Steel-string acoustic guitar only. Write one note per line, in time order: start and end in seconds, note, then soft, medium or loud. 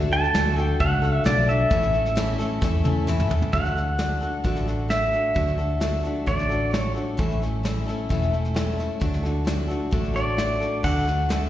0.00 0.12 D3 medium
0.00 0.12 A3 medium
0.00 0.12 D4 loud
0.00 0.12 F#4 medium
0.11 0.34 D4 soft
0.11 0.35 F#4 soft
0.11 0.34 A4 soft
0.34 0.57 D3 medium
0.34 0.57 A3 medium
0.34 0.58 D4 medium
0.34 0.57 F#4 medium
0.34 0.55 A4 medium
0.56 0.79 D4 soft
0.56 0.81 F#4 medium
0.56 0.80 A4 medium
0.80 1.03 A3 medium
0.80 1.03 D4 medium
0.80 1.02 F#4 medium
0.80 1.01 A4 medium
1.02 1.24 D4 soft
1.02 1.25 F#4 soft
1.02 1.25 A4 medium
1.24 1.48 D3 medium
1.24 1.48 A3 medium
1.24 1.48 D4 medium
1.24 1.48 F#4 medium
1.24 1.46 A4 medium
1.47 1.72 D4 soft
1.47 1.72 F#4 soft
1.47 1.71 A4 soft
1.70 1.93 A2 medium
1.70 1.94 E3 medium
1.70 1.94 A3 medium
1.70 1.94 C#4 medium
1.70 1.93 E4 medium
1.70 1.92 A4 medium
1.93 2.16 A3 soft
1.93 2.16 C#4 soft
1.93 2.16 E4 soft
1.93 2.16 A4 soft
2.15 2.39 A2 medium
2.15 2.39 E3 medium
2.15 2.39 A3 medium
2.15 2.40 C#4 medium
2.15 2.39 E4 medium
2.15 2.37 A4 loud
2.39 2.60 A3 medium
2.39 2.62 C#4 medium
2.39 2.62 E4 medium
2.39 2.62 A4 medium
2.61 2.84 A3 medium
2.61 2.85 C#4 medium
2.61 2.84 E4 medium
2.61 2.83 A4 medium
2.84 3.07 A3 medium
2.84 3.08 C#4 medium
2.84 3.08 E4 medium
2.84 3.07 A4 medium
3.07 3.30 A2 medium
3.07 3.31 E3 medium
3.07 3.31 A3 medium
3.07 3.31 C#4 medium
3.07 3.30 E4 loud
3.07 3.29 A4 medium
3.30 3.52 A3 soft
3.30 3.53 C#4 soft
3.30 3.54 E4 soft
3.30 3.53 A4 medium
3.52 3.76 D3 medium
3.52 3.76 A3 medium
3.52 3.76 D4 medium
3.52 3.76 F#4 medium
3.52 3.74 A4 medium
3.76 3.98 D4 soft
3.76 3.99 F#4 soft
3.76 3.99 A4 soft
3.98 4.21 A3 soft
3.98 4.22 D4 medium
3.98 4.21 F#4 medium
3.98 4.19 A4 medium
4.20 4.43 D4 soft
4.20 4.44 F#4 medium
4.20 4.44 A4 medium
4.44 4.67 D3 medium
4.44 4.67 A3 medium
4.44 4.67 D4 medium
4.44 4.66 F#4 medium
4.44 4.64 A4 medium
4.66 4.89 D4 soft
4.66 4.90 F#4 medium
4.66 4.89 A4 medium
4.89 5.12 A3 medium
4.89 5.13 D4 medium
4.89 5.12 F#4 medium
4.89 5.10 A4 medium
5.11 5.35 D4 soft
5.11 5.35 F#4 soft
5.11 5.35 A4 soft
5.34 5.58 D3 medium
5.34 5.58 A3 medium
5.34 5.59 D4 medium
5.34 5.58 F#4 medium
5.34 5.57 A4 medium
5.58 5.80 D4 soft
5.58 5.81 F#4 soft
5.58 5.81 A4 soft
5.80 6.04 A3 medium
5.80 6.04 D4 medium
5.80 6.04 F#4 medium
5.80 6.02 A4 medium
6.03 6.27 D4 medium
6.03 6.27 F#4 soft
6.03 6.27 A4 medium
6.26 6.50 D3 medium
6.26 6.50 A3 medium
6.26 6.50 D4 medium
6.26 6.50 F#4 medium
6.26 6.48 A4 medium
6.49 6.72 D4 soft
6.49 6.73 F#4 soft
6.49 6.72 A4 soft
6.71 6.95 A3 soft
6.71 6.96 D4 medium
6.71 6.95 F#4 medium
6.71 6.93 A4 medium
6.94 7.18 D4 soft
6.94 7.19 F#4 soft
6.94 7.18 A4 soft
7.17 7.41 A2 medium
7.17 7.41 E3 medium
7.17 7.41 A3 medium
7.17 7.41 C#4 medium
7.17 7.40 E4 medium
7.17 7.39 A4 medium
7.40 7.62 A3 soft
7.40 7.64 C#4 soft
7.40 7.64 E4 soft
7.40 7.64 A4 soft
7.63 7.87 A3 medium
7.63 7.87 C#4 medium
7.63 7.87 E4 medium
7.63 7.85 A4 medium
7.86 8.09 A3 soft
7.86 8.10 C#4 soft
7.86 8.10 E4 medium
7.86 8.10 A4 medium
8.09 8.32 A2 medium
8.09 8.33 E3 medium
8.09 8.33 A3 medium
8.09 8.33 C#4 medium
8.09 8.32 E4 medium
8.09 8.31 A4 medium
8.32 8.53 A3 soft
8.32 8.55 C#4 soft
8.32 8.56 E4 soft
8.32 8.55 A4 medium
8.54 8.78 A3 medium
8.54 8.78 C#4 medium
8.54 8.77 E4 medium
8.54 8.75 A4 medium
8.77 8.99 A3 soft
8.77 9.01 C#4 soft
8.77 9.01 E4 soft
8.77 9.00 A4 soft
9.00 9.23 D3 medium
9.00 9.24 A3 medium
9.00 9.24 D4 medium
9.00 9.24 F#4 medium
9.00 9.22 A4 medium
9.23 9.45 D4 soft
9.23 9.46 F#4 soft
9.23 9.46 A4 soft
9.45 9.69 A3 medium
9.45 9.69 D4 medium
9.45 9.68 F#4 medium
9.45 9.66 A4 medium
9.67 9.91 D4 soft
9.67 9.92 F#4 soft
9.67 9.92 A4 medium
9.91 10.15 D3 medium
9.91 10.15 A3 medium
9.91 10.16 D4 medium
9.91 10.14 F#4 medium
9.91 10.12 A4 medium
10.14 10.37 D4 soft
10.14 10.38 F#4 medium
10.14 10.38 A4 medium
10.37 10.61 A3 medium
10.37 10.61 D4 medium
10.37 10.61 F#4 medium
10.37 10.59 A4 medium
10.60 10.83 D4 soft
10.60 10.84 F#4 soft
10.60 10.84 A4 soft
10.83 11.07 D3 medium
10.83 11.07 A3 medium
10.83 11.07 D4 medium
10.83 11.07 F#4 medium
10.83 11.05 A4 medium
11.07 11.29 D4 soft
11.07 11.30 F#4 soft
11.07 11.30 A4 soft
11.29 11.49 D3 medium
11.29 11.49 A3 medium
11.29 11.49 D4 medium
11.29 11.49 F#4 medium
11.29 11.49 A4 medium